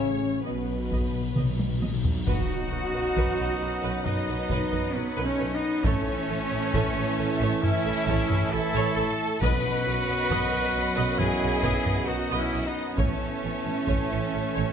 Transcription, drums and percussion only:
0, 0, Header, 1, 2, 480
1, 0, Start_track
1, 0, Tempo, 913242
1, 1190, Time_signature, 4, 2, 24, 8
1, 1191, Tempo, 894188
1, 7880, End_track
2, 0, Start_track
2, 0, Title_t, "Taiko and cinematic ensemble drums"
2, 479, Note_on_c, 9, 41, 67
2, 532, Note_off_c, 9, 41, 0
2, 717, Note_on_c, 9, 47, 71
2, 770, Note_off_c, 9, 47, 0
2, 840, Note_on_c, 9, 48, 72
2, 892, Note_off_c, 9, 48, 0
2, 958, Note_on_c, 9, 48, 71
2, 1011, Note_off_c, 9, 48, 0
2, 1077, Note_on_c, 9, 43, 82
2, 1129, Note_off_c, 9, 43, 0
2, 1195, Note_on_c, 9, 41, 85
2, 1249, Note_off_c, 9, 41, 0
2, 1675, Note_on_c, 9, 41, 79
2, 1728, Note_off_c, 9, 41, 0
2, 2152, Note_on_c, 9, 45, 55
2, 2206, Note_off_c, 9, 45, 0
2, 2390, Note_on_c, 9, 41, 74
2, 2443, Note_off_c, 9, 41, 0
2, 2513, Note_on_c, 9, 45, 50
2, 2566, Note_off_c, 9, 45, 0
2, 3111, Note_on_c, 9, 41, 97
2, 3165, Note_off_c, 9, 41, 0
2, 3592, Note_on_c, 9, 41, 83
2, 3646, Note_off_c, 9, 41, 0
2, 4072, Note_on_c, 9, 45, 55
2, 4125, Note_off_c, 9, 45, 0
2, 4313, Note_on_c, 9, 41, 78
2, 4367, Note_off_c, 9, 41, 0
2, 4434, Note_on_c, 9, 45, 54
2, 4488, Note_off_c, 9, 45, 0
2, 5030, Note_on_c, 9, 41, 89
2, 5083, Note_off_c, 9, 41, 0
2, 5506, Note_on_c, 9, 41, 74
2, 5559, Note_off_c, 9, 41, 0
2, 5981, Note_on_c, 9, 45, 61
2, 6034, Note_off_c, 9, 45, 0
2, 6218, Note_on_c, 9, 41, 77
2, 6271, Note_off_c, 9, 41, 0
2, 6339, Note_on_c, 9, 45, 49
2, 6393, Note_off_c, 9, 45, 0
2, 6943, Note_on_c, 9, 41, 91
2, 6997, Note_off_c, 9, 41, 0
2, 7426, Note_on_c, 9, 41, 74
2, 7480, Note_off_c, 9, 41, 0
2, 7880, End_track
0, 0, End_of_file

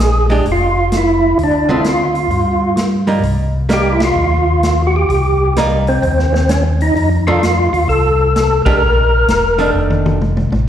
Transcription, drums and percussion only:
0, 0, Header, 1, 2, 480
1, 0, Start_track
1, 0, Tempo, 464756
1, 1429, Time_signature, 4, 2, 24, 8
1, 11038, End_track
2, 0, Start_track
2, 0, Title_t, "Drums"
2, 308, Note_on_c, 9, 46, 33
2, 411, Note_off_c, 9, 46, 0
2, 471, Note_on_c, 9, 46, 39
2, 574, Note_off_c, 9, 46, 0
2, 947, Note_on_c, 9, 42, 54
2, 950, Note_on_c, 9, 38, 63
2, 1050, Note_off_c, 9, 42, 0
2, 1053, Note_off_c, 9, 38, 0
2, 1432, Note_on_c, 9, 46, 42
2, 1535, Note_off_c, 9, 46, 0
2, 1903, Note_on_c, 9, 42, 51
2, 1906, Note_on_c, 9, 38, 62
2, 2006, Note_off_c, 9, 42, 0
2, 2009, Note_off_c, 9, 38, 0
2, 2219, Note_on_c, 9, 46, 34
2, 2322, Note_off_c, 9, 46, 0
2, 2382, Note_on_c, 9, 46, 38
2, 2486, Note_off_c, 9, 46, 0
2, 2859, Note_on_c, 9, 42, 53
2, 2862, Note_on_c, 9, 38, 63
2, 2962, Note_off_c, 9, 42, 0
2, 2965, Note_off_c, 9, 38, 0
2, 3172, Note_on_c, 9, 46, 32
2, 3275, Note_off_c, 9, 46, 0
2, 3339, Note_on_c, 9, 46, 42
2, 3442, Note_off_c, 9, 46, 0
2, 3815, Note_on_c, 9, 42, 47
2, 3818, Note_on_c, 9, 38, 69
2, 3919, Note_off_c, 9, 42, 0
2, 3922, Note_off_c, 9, 38, 0
2, 4132, Note_on_c, 9, 51, 57
2, 4135, Note_on_c, 9, 38, 65
2, 4235, Note_off_c, 9, 51, 0
2, 4238, Note_off_c, 9, 38, 0
2, 4781, Note_on_c, 9, 42, 50
2, 4785, Note_on_c, 9, 38, 65
2, 4885, Note_off_c, 9, 42, 0
2, 4888, Note_off_c, 9, 38, 0
2, 5264, Note_on_c, 9, 46, 42
2, 5367, Note_off_c, 9, 46, 0
2, 5746, Note_on_c, 9, 42, 51
2, 5749, Note_on_c, 9, 38, 69
2, 5849, Note_off_c, 9, 42, 0
2, 5852, Note_off_c, 9, 38, 0
2, 6063, Note_on_c, 9, 46, 35
2, 6166, Note_off_c, 9, 46, 0
2, 6226, Note_on_c, 9, 46, 43
2, 6329, Note_off_c, 9, 46, 0
2, 6390, Note_on_c, 9, 38, 29
2, 6494, Note_off_c, 9, 38, 0
2, 6554, Note_on_c, 9, 38, 43
2, 6657, Note_off_c, 9, 38, 0
2, 6702, Note_on_c, 9, 42, 59
2, 6705, Note_on_c, 9, 38, 67
2, 6806, Note_off_c, 9, 42, 0
2, 6809, Note_off_c, 9, 38, 0
2, 7027, Note_on_c, 9, 46, 35
2, 7130, Note_off_c, 9, 46, 0
2, 7192, Note_on_c, 9, 46, 43
2, 7295, Note_off_c, 9, 46, 0
2, 7672, Note_on_c, 9, 42, 49
2, 7675, Note_on_c, 9, 38, 67
2, 7775, Note_off_c, 9, 42, 0
2, 7778, Note_off_c, 9, 38, 0
2, 7990, Note_on_c, 9, 46, 35
2, 8093, Note_off_c, 9, 46, 0
2, 8153, Note_on_c, 9, 46, 35
2, 8257, Note_off_c, 9, 46, 0
2, 8630, Note_on_c, 9, 42, 47
2, 8633, Note_on_c, 9, 38, 70
2, 8734, Note_off_c, 9, 42, 0
2, 8737, Note_off_c, 9, 38, 0
2, 8943, Note_on_c, 9, 51, 67
2, 8944, Note_on_c, 9, 36, 80
2, 9047, Note_off_c, 9, 51, 0
2, 9048, Note_off_c, 9, 36, 0
2, 9587, Note_on_c, 9, 42, 48
2, 9590, Note_on_c, 9, 38, 65
2, 9691, Note_off_c, 9, 42, 0
2, 9694, Note_off_c, 9, 38, 0
2, 9903, Note_on_c, 9, 46, 34
2, 10006, Note_off_c, 9, 46, 0
2, 10229, Note_on_c, 9, 48, 54
2, 10332, Note_off_c, 9, 48, 0
2, 10388, Note_on_c, 9, 48, 67
2, 10491, Note_off_c, 9, 48, 0
2, 10549, Note_on_c, 9, 47, 56
2, 10652, Note_off_c, 9, 47, 0
2, 10708, Note_on_c, 9, 47, 62
2, 10812, Note_off_c, 9, 47, 0
2, 10867, Note_on_c, 9, 47, 67
2, 10971, Note_off_c, 9, 47, 0
2, 11038, End_track
0, 0, End_of_file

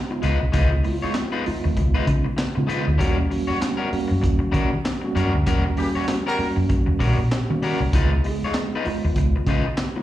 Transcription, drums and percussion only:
0, 0, Header, 1, 2, 480
1, 0, Start_track
1, 0, Tempo, 616016
1, 424, Time_signature, 4, 2, 24, 8
1, 7814, End_track
2, 0, Start_track
2, 0, Title_t, "Drums"
2, 177, Note_on_c, 9, 42, 81
2, 255, Note_off_c, 9, 42, 0
2, 416, Note_on_c, 9, 42, 95
2, 419, Note_on_c, 9, 36, 121
2, 494, Note_off_c, 9, 42, 0
2, 497, Note_off_c, 9, 36, 0
2, 656, Note_on_c, 9, 46, 78
2, 734, Note_off_c, 9, 46, 0
2, 893, Note_on_c, 9, 38, 99
2, 893, Note_on_c, 9, 39, 90
2, 894, Note_on_c, 9, 42, 95
2, 971, Note_off_c, 9, 38, 0
2, 971, Note_off_c, 9, 39, 0
2, 972, Note_off_c, 9, 42, 0
2, 1138, Note_on_c, 9, 46, 66
2, 1216, Note_off_c, 9, 46, 0
2, 1377, Note_on_c, 9, 36, 92
2, 1378, Note_on_c, 9, 42, 91
2, 1455, Note_off_c, 9, 36, 0
2, 1456, Note_off_c, 9, 42, 0
2, 1616, Note_on_c, 9, 36, 96
2, 1616, Note_on_c, 9, 42, 65
2, 1694, Note_off_c, 9, 36, 0
2, 1694, Note_off_c, 9, 42, 0
2, 1855, Note_on_c, 9, 42, 90
2, 1858, Note_on_c, 9, 38, 108
2, 1858, Note_on_c, 9, 39, 93
2, 1933, Note_off_c, 9, 42, 0
2, 1936, Note_off_c, 9, 38, 0
2, 1936, Note_off_c, 9, 39, 0
2, 2100, Note_on_c, 9, 42, 79
2, 2178, Note_off_c, 9, 42, 0
2, 2341, Note_on_c, 9, 36, 110
2, 2342, Note_on_c, 9, 42, 106
2, 2419, Note_off_c, 9, 36, 0
2, 2419, Note_off_c, 9, 42, 0
2, 2582, Note_on_c, 9, 46, 78
2, 2660, Note_off_c, 9, 46, 0
2, 2822, Note_on_c, 9, 38, 108
2, 2822, Note_on_c, 9, 39, 87
2, 2823, Note_on_c, 9, 42, 99
2, 2900, Note_off_c, 9, 38, 0
2, 2900, Note_off_c, 9, 39, 0
2, 2901, Note_off_c, 9, 42, 0
2, 3060, Note_on_c, 9, 46, 75
2, 3138, Note_off_c, 9, 46, 0
2, 3301, Note_on_c, 9, 36, 87
2, 3301, Note_on_c, 9, 42, 82
2, 3379, Note_off_c, 9, 36, 0
2, 3379, Note_off_c, 9, 42, 0
2, 3538, Note_on_c, 9, 36, 93
2, 3540, Note_on_c, 9, 42, 66
2, 3616, Note_off_c, 9, 36, 0
2, 3618, Note_off_c, 9, 42, 0
2, 3781, Note_on_c, 9, 42, 94
2, 3783, Note_on_c, 9, 38, 113
2, 3783, Note_on_c, 9, 39, 92
2, 3859, Note_off_c, 9, 42, 0
2, 3861, Note_off_c, 9, 38, 0
2, 3861, Note_off_c, 9, 39, 0
2, 4024, Note_on_c, 9, 42, 79
2, 4102, Note_off_c, 9, 42, 0
2, 4258, Note_on_c, 9, 42, 104
2, 4262, Note_on_c, 9, 36, 119
2, 4336, Note_off_c, 9, 42, 0
2, 4340, Note_off_c, 9, 36, 0
2, 4495, Note_on_c, 9, 46, 80
2, 4573, Note_off_c, 9, 46, 0
2, 4740, Note_on_c, 9, 38, 103
2, 4740, Note_on_c, 9, 39, 87
2, 4741, Note_on_c, 9, 42, 102
2, 4818, Note_off_c, 9, 38, 0
2, 4818, Note_off_c, 9, 39, 0
2, 4819, Note_off_c, 9, 42, 0
2, 4980, Note_on_c, 9, 46, 72
2, 5058, Note_off_c, 9, 46, 0
2, 5215, Note_on_c, 9, 42, 88
2, 5219, Note_on_c, 9, 36, 91
2, 5293, Note_off_c, 9, 42, 0
2, 5297, Note_off_c, 9, 36, 0
2, 5458, Note_on_c, 9, 36, 97
2, 5462, Note_on_c, 9, 46, 64
2, 5535, Note_off_c, 9, 36, 0
2, 5540, Note_off_c, 9, 46, 0
2, 5700, Note_on_c, 9, 42, 91
2, 5703, Note_on_c, 9, 38, 107
2, 5703, Note_on_c, 9, 39, 89
2, 5778, Note_off_c, 9, 42, 0
2, 5780, Note_off_c, 9, 38, 0
2, 5780, Note_off_c, 9, 39, 0
2, 5941, Note_on_c, 9, 46, 75
2, 6019, Note_off_c, 9, 46, 0
2, 6181, Note_on_c, 9, 36, 114
2, 6181, Note_on_c, 9, 42, 108
2, 6259, Note_off_c, 9, 36, 0
2, 6259, Note_off_c, 9, 42, 0
2, 6422, Note_on_c, 9, 46, 76
2, 6500, Note_off_c, 9, 46, 0
2, 6657, Note_on_c, 9, 38, 112
2, 6657, Note_on_c, 9, 39, 98
2, 6658, Note_on_c, 9, 42, 96
2, 6735, Note_off_c, 9, 38, 0
2, 6735, Note_off_c, 9, 39, 0
2, 6736, Note_off_c, 9, 42, 0
2, 6898, Note_on_c, 9, 46, 69
2, 6976, Note_off_c, 9, 46, 0
2, 7136, Note_on_c, 9, 42, 81
2, 7137, Note_on_c, 9, 36, 80
2, 7213, Note_off_c, 9, 42, 0
2, 7215, Note_off_c, 9, 36, 0
2, 7376, Note_on_c, 9, 36, 94
2, 7377, Note_on_c, 9, 42, 70
2, 7454, Note_off_c, 9, 36, 0
2, 7454, Note_off_c, 9, 42, 0
2, 7615, Note_on_c, 9, 42, 90
2, 7617, Note_on_c, 9, 38, 108
2, 7617, Note_on_c, 9, 39, 102
2, 7693, Note_off_c, 9, 42, 0
2, 7695, Note_off_c, 9, 38, 0
2, 7695, Note_off_c, 9, 39, 0
2, 7814, End_track
0, 0, End_of_file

